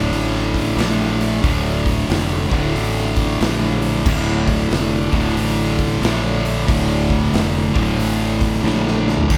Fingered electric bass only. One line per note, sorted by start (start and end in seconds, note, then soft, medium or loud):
0.11 0.73 A1 loud
0.76 1.39 A#1 loud
1.44 2.05 D1 medium
2.09 2.47 F1 loud
2.52 2.73 D1 medium
2.75 3.36 A1 loud
3.41 4.02 A#1 loud
4.06 4.67 D1 loud
4.71 5.10 F1 medium
5.13 5.35 D1 medium
5.37 5.99 A1 loud
6.02 6.64 A#1 loud
6.69 7.30 D1 medium
7.33 7.72 F1 medium
7.76 7.97 D1 loud
7.99 8.61 A1 loud
8.64 9.26 A#1 loud
9.30 9.38 D1 loud